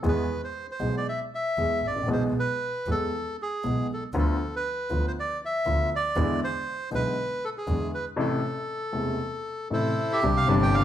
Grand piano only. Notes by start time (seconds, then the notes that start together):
0.03 E2 E3 G#3 B3 G#4
0.79 B1 B2 E3 G#3 B3 G#4
1.57 E2 E3 G#3 B3 G#4
1.89 G#1
1.96 A1
2.03 A#1
2.08 B1 B2 E3 G#3 B3 G#4
2.87 E2 E3 G#3 B3 G#4
3.64 B1 B2 E3 G#3 B3 G#4
4.14 D2 D3 F3 B3 F4
4.90 D2 D3 F3 B3 F4
5.66 D2 D3 F3 B3 F4
6.16 E2 D3 E3 G#3 B3 E4
6.91 B1 B2 D3 G#3 B3 E4
7.67 E2 D3 E3 G#3 B3 E4
8.16 A1 A2 C3 E3 A3 E4
8.93 E1 E2 C3 E3 A3 E4
9.70 A1 A2 C3 E3 A3 E4
10.23 C2 C3 E3 G3 D4
10.46 G1 G2 C3 E3 G3
10.51 D4